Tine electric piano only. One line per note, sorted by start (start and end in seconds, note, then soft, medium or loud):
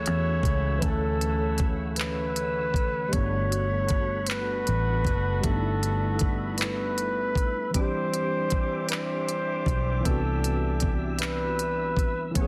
0.00 0.76 E3 medium
0.00 0.77 A3 medium
0.00 0.78 C#4 medium
0.00 0.80 E4 medium
0.00 0.81 F#4 medium
0.78 3.07 E3 medium
0.78 3.08 A3 medium
0.83 3.11 D3 medium
0.83 3.09 C#4 medium
0.88 3.12 A4 medium
3.08 5.37 G3 medium
3.08 5.39 A3 medium
3.13 5.40 B3 medium
3.13 5.41 D4 medium
3.18 3.22 E4 medium
3.25 5.46 F#4 medium
5.40 7.69 G3 medium
5.40 7.70 A3 medium
5.45 7.71 B3 medium
5.45 7.72 D4 medium
5.50 5.53 D#4 medium
5.57 7.77 E4 medium
7.70 9.99 E3 medium
7.70 10.01 G3 medium
7.75 10.02 C4 medium
7.75 10.03 D4 medium
7.81 10.04 G4 medium
10.00 12.29 E3 medium
10.00 12.31 B3 medium
10.05 12.32 C4 medium
10.05 12.33 D4 medium
10.10 12.34 F#4 medium
12.31 12.47 E3 medium
12.31 12.47 A3 medium
12.36 12.47 B3 medium
12.36 12.47 C#4 medium
12.41 12.47 G#4 medium